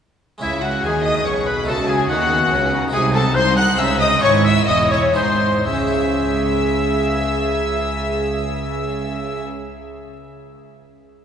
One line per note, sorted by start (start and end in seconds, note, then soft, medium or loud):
0.38 0.81 G#3 medium
0.38 1.62 C#4 medium
0.38 1.63 E4 medium
0.38 0.62 E5 loud
0.42 0.81 C#2 medium
0.42 0.80 C#3 medium
0.42 0.81 C#3 medium
0.42 0.81 C#4 medium
0.42 0.52 E4 medium
0.42 0.62 E4 medium
0.63 0.84 F#4 medium
0.63 0.85 F#4 medium
0.63 0.84 F#5 loud
0.84 1.25 D#2 medium
0.84 1.22 D#3 medium
0.84 1.25 D#3 medium
0.84 1.68 G#4 medium
0.84 0.94 G#4 medium
0.84 1.06 G#4 loud
0.84 1.05 G#5 loud
1.05 1.26 D#5 medium
1.05 1.15 D#5 loud
1.05 1.25 D#6 loud
1.25 1.67 B1 medium
1.25 1.67 B2 medium
1.25 1.64 B2 medium
1.25 1.36 C#5 medium
1.25 1.47 C#5 medium
1.25 1.47 C#6 medium
1.47 1.56 B4 medium
1.47 1.68 B4 medium
1.47 1.68 B5 loud
1.64 2.09 C#2 medium
1.64 2.87 A3 medium
1.64 2.88 D#4 medium
1.64 1.89 A4 medium
1.68 2.09 C#3 medium
1.68 2.06 C#3 medium
1.68 2.10 F#4 medium
1.68 1.77 A4 medium
1.68 1.88 A5 loud
1.88 2.09 G#4 medium
1.88 2.10 G#5 loud
2.09 2.50 D#2 loud
2.09 2.50 D#3 medium
2.09 2.47 D#3 medium
2.09 2.30 D#4 medium
2.09 2.81 F#4 medium
2.09 2.81 F#4 loud
2.09 2.81 F#5 loud
2.30 2.50 B3 medium
2.51 2.92 C#2 medium
2.51 2.92 C#3 medium
2.51 2.89 C#3 medium
2.51 2.72 C#4 medium
2.71 2.91 D#4 medium
2.88 3.33 C2 loud
2.88 3.73 G#3 medium
2.88 3.74 D#4 medium
2.88 3.75 G#4 medium
2.93 3.31 C3 medium
2.93 3.34 C3 loud
2.93 4.20 D#4 medium
2.93 3.01 G#4 loud
2.93 3.12 G#4 loud
2.93 3.13 G#5 loud
3.14 3.22 A4 loud
3.14 3.36 A4 loud
3.14 3.35 A5 loud
3.35 3.77 C2 medium
3.35 3.74 C2 medium
3.35 3.78 C2 medium
3.35 3.56 C5 loud
3.35 3.57 C6 loud
3.56 3.80 F#5 loud
3.56 3.65 F#5 loud
3.56 3.78 F#6 loud
3.74 4.17 G#3 medium
3.74 4.20 C#4 medium
3.74 4.20 G#4 medium
3.78 4.22 C#2 medium
3.78 4.19 C#3 medium
3.78 4.22 C#3 medium
3.78 4.00 E5 loud
3.78 4.02 E5 loud
3.78 4.00 E6 loud
4.00 4.22 D#5 loud
4.00 4.22 D#6 loud
4.18 5.11 G#3 medium
4.18 5.11 E4 medium
4.18 5.12 G#4 medium
4.18 4.43 C#5 loud
4.18 4.44 C#6 loud
4.22 4.67 G#1 loud
4.22 4.64 G#2 medium
4.22 4.67 G#2 loud
4.22 5.14 E4 medium
4.22 4.30 C#5 loud
4.44 4.54 E5 loud
4.44 4.68 E5 loud
4.44 4.68 E6 loud
4.68 5.15 E1 medium
4.68 5.15 E2 medium
4.68 5.12 E2 medium
4.68 4.93 D#5 loud
4.68 4.91 D#5 loud
4.68 4.76 D#6 loud
4.91 5.16 C#5 loud
4.91 5.15 C#5 loud
4.91 5.00 C#6 loud
5.13 5.65 G#1 medium
5.13 5.65 G#2 medium
5.13 5.62 G#2 medium
5.13 5.63 D#4 medium
5.13 5.42 D#4 medium
5.13 5.64 G#4 medium
5.13 5.66 C5 medium
5.13 5.65 C5 medium
5.13 5.65 C6 loud
5.65 9.43 C#2 medium
5.65 9.43 C#3 medium
5.65 10.13 C#3 medium
5.65 9.43 G#4 medium
5.65 9.43 E5 medium
5.65 9.44 E5 medium
5.65 9.43 E6 loud
5.73 10.17 G#3 medium
5.80 10.20 C#4 medium
5.87 10.24 E4 medium
5.95 10.27 G#4 medium
6.01 10.31 E5 medium